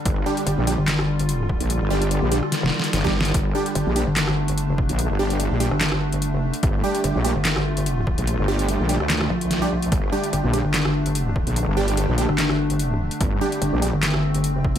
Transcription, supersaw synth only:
X:1
M:4/4
L:1/16
Q:"Swing 16ths" 1/4=146
K:Gm
V:1 name="Supersaw synth"
z2 [G,DG]4 [G,DG] z8 z | z2 [G,DG]4 [G,DG] z6 [G,DG] z2 | z2 [G,DG]4 [G,DG] z8 z | z2 [G,DG]4 [G,DG] z8 z |
z2 [G,DG]4 [G,DG] z8 z | z2 [G,DG]4 [G,DG] z6 [G,DG] z2 | z2 [G,DG]4 [G,DG] z8 z | z2 [G,DG]4 [G,DG] z8 z |
z2 [G,DG]4 [G,DG] z8 z |]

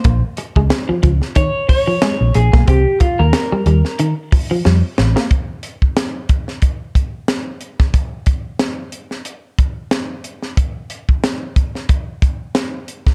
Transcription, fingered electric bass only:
X:1
M:4/4
L:1/16
Q:"Swing 16ths" 1/4=91
K:Cphr
V:1 name="Fingered electric bass" clef=bass
B,,, z2 D,, z2 D,, z6 B,,, B,,, _C,, | C,, z2 E,, z2 E,, z4 z F,, z =A,,, z | z16 | z16 |
z16 |]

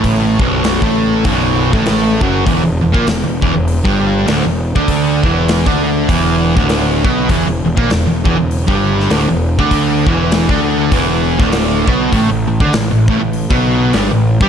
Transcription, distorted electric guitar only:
X:1
M:4/4
L:1/16
Q:"Swing" 1/4=99
K:Edor
V:1 name="Distorted electric guitar" clef=bass
[A,,A,]2 [B,,,B,,]3 [A,,A,]3 [B,,,B,,]3 [A,,A,]3 [F,,F,]2 | [E,,E,] E,, E,, [^A,,^A,] E,, E,, [E,,E,] E,,2 [G,,G,]3 [D,,D,] E,,2 [D,D]- | [D,D]2 [E,,E,]3 [D,D]3 [E,,E,]3 [D,,D,]3 [B,,B,]2 | [E,,E,] E,, E,, [^A,,^A,] E,, E,, [E,,E,] E,,2 [G,,G,]3 [D,,D,] E,,2 [D,D]- |
[D,D]2 [E,,E,]3 [D,D]3 [E,,E,]3 [D,,D,]3 [B,,B,]2 | [A,,A,] A,, A,, [D,D] A,, A,, [A,,A,] A,,2 [B,,B,]3 [G,,G,] A,,2 [G,G] |]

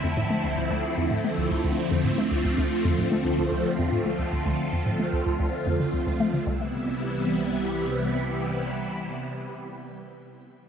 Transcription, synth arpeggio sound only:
X:1
M:4/4
L:1/16
Q:1/4=112
K:C
V:1 name="Synth arpeggio sound" clef=bass
F,, A,, A, D,, D,, D,, z F,, A,, A, D,, D,, D,, z F,, A,, | A, D,, D,, D,, z F,, A,, A, D,, D,, D,, z F,, A,, A, D,, | D,, D,, z F,, A,, A, D,, D,, D,, z F,, D, D,, D,, A, D, | C,,2 z12 z2 |
z16 |]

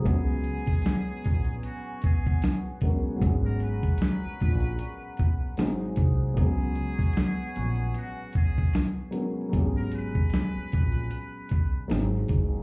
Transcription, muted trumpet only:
X:1
M:4/4
L:1/16
Q:"Swing 16ths" 1/4=76
K:G#m
V:1 name="Muted trumpet"
G8 F2 G3 z3 | z A B8- B2 z4 | G8 F2 G3 z3 | z A B8- B2 z4 |]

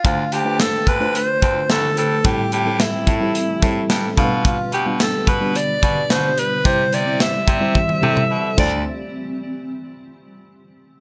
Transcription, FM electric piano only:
X:1
M:4/4
L:1/16
Q:1/4=109
K:Ddor
V:1 name="FM electric piano"
[A,DFc]2 z [A,DFB]3 z [A,DFc]4- [A,DFc] z4 | [G,CEA]2 z [G,CEA]3 z [G,CEA]2 z [G,CEA]4 [G,B,DAB]2- | [G,B,DAB]2 z [G,B,DF]3 z [G,B,DB]4- [G,B,DB] z4 | [G,CEc]2 z [G,CEd]3 z [G,CEc]2 z [G,CEA]4 [A,DFc]2 |
z16 |]
V:2 name="FM electric piano" clef=bass
D,6 z8 z2 | A,,6 z8 B,,2- | B,,4 z12 | C,6 z8 D,,2 |
z16 |]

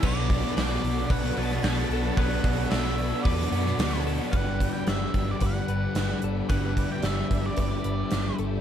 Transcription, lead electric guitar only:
X:1
M:4/4
L:1/16
Q:1/4=111
K:G
V:1 name="Lead electric guitar"
d4 d4 f2 a2 a4 | f4 e4 d6 z2 | f3 g e3 d f6 z2 | f3 g e3 d d6 z2 |]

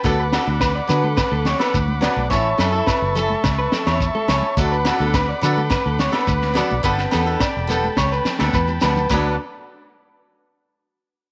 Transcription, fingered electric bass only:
X:1
M:4/4
L:1/16
Q:1/4=106
K:D
V:1 name="Fingered electric bass" clef=bass
D,,3 D,,3 D,3 D,,2 z D,,3 B,,, | A,,,2 F,,2 z F,,,3 C,,2 z E,,2 z C,, z | D,,3 D,,3 D,3 D,,2 z D,,3 B,,, | G,,,2 E,,2 z E,,,3 C,,2 z D,, E,,2 D,,2 |
D,,2 z12 z2 |]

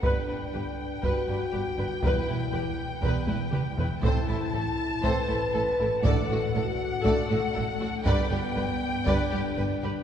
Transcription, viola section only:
X:1
M:4/4
L:1/8
Q:1/4=120
K:G
V:1 name="Viola section"
B B B z B B B B | B B B z B B B B | A A A z A A A A | A A A z A A A A |
B B B z B B B B |]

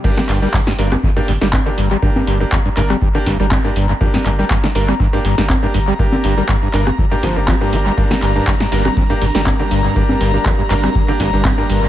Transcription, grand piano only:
X:1
M:4/4
L:1/16
Q:"Swing 16ths" 1/4=121
K:Gm
V:1 name="Grand piano"
[B,DG]3 [B,DG] z2 [B,DB] z2 [B,DG] z [B,DG] z [B,DG] z2 | [B,DG]3 [B,DG] z2 [B,DB] z2 [B,DG] z [B,DG] z [B,DG] z2 | [B,DG]3 [B,DG] z2 [B,DB] z2 [B,DG] z [B,DG] z [B,DG] z2 | [B,DG]3 [B,DG] z2 [B,DB] z2 [B,DG] [B,Dc] [B,DG] z [B,DG]3 |
[B,DG]3 [B,DG] z2 [B,DB] z2 [B,DG] z [B,DG] z [B,DG] z2 | [B,DG]3 [B,DG] z2 [B,DB] z2 [B,DG] z [B,DG] z [B,DG] z2 |]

